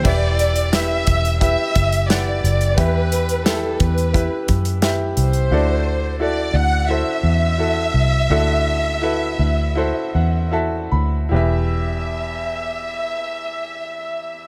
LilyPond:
<<
  \new Staff \with { instrumentName = "Violin section" } { \time 4/4 \key d \mixolydian \tempo 4 = 87 d''4 e''4 e''4 d''4 | b'4 a'8 b'4 r4 c''8~ | c''4 d''8 fis''8 e''2~ | e''2. r4 |
e''1 | }
  \new Staff \with { instrumentName = "Upright piano" } { \time 4/4 \key d \mixolydian <e' g' b' e''>4 <e' g' b' e''>4 <e' g' b' e''>4 <e' g' b' fis''>4 | <e' g' b' e''>4 <e' g' b' e''>4 <e' g' b' e''>4 <e' g' b' e''>4 | <e' fis' a' d''>4 <e' fis' a' d''>4 <e' fis' a' c''>4 <e' fis' a' e''>4 | <e' fis' a' e''>4 <e' fis' a' b'>4 <e' fis' a' c''>4 <e' fis' a' e''>4 |
<e' g' b' e''>1 | }
  \new Staff \with { instrumentName = "Upright piano" } { \clef bass \time 4/4 \key d \mixolydian e4. r2 r8 | e4. r2 r8 | d4. r2 r8 | d4. r4 fis''8 a''8 b''8 |
e,1 | }
  \new Staff \with { instrumentName = "Fingered electric bass" } { \clef bass \time 4/4 \key d \mixolydian e,,4. e,,8. r16 fis,,4 fis,,8 | e,4. e,8. r16 fis,4 c,8 | d,4. d,8. r16 e,4 c,8 | d,4. d,8. r16 e,4 d,8 |
e,,1 | }
  \new DrumStaff \with { instrumentName = "Drums" } \drummode { \time 4/4 <cymc bd>8 hh16 hh16 <hh sn>8 <hh bd>16 hh16 <hh bd>8 <hh bd>16 hh16 <hh sn>8 hh16 hh16 | <hh bd>8 hh16 hh16 <hh sn>8 <hh bd>16 hh16 <hh bd>8 <hh bd>16 hh16 <hh sn>8 hh16 hh16 | r4 r4 r4 r4 | r4 r4 r4 r4 |
r4 r4 r4 r4 | }
>>